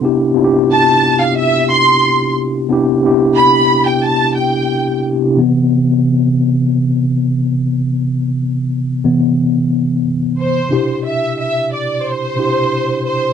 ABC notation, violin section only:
X:1
M:4/4
L:1/16
Q:1/4=90
K:C
V:1 name="Violin section"
z4 a3 f e2 c'4 z2 | z4 b3 g a2 g4 z2 | z16 | z12 z2 c2- |
c2 e2 e2 d2 c6 c2 |]